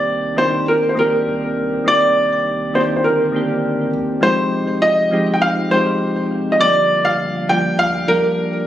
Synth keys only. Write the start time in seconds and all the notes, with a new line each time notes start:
Already playing: D#3 A#3 C4 D4 G4
0.36 D#3 A#3 C4 D4 G4
0.95 D#3 A#3 C4 D4
1.00 G4
1.84 D#3 A#3 C4 D4
1.89 G4
2.74 D#3 A#3 C4 D4 G4
3.32 D#3 A#3 C4 D4
3.36 G4
4.21 F3 G#3 C4 D#4 G4
5.11 F3 G#3 C4 D#4 G4
5.70 F3 G#3 C4 D#4 G4
6.60 F3 G3 A#3 D4
6.64 G4
7.50 F3 G3 A#3 D4 G4
8.07 F3 G3 A#3 D4
8.11 G4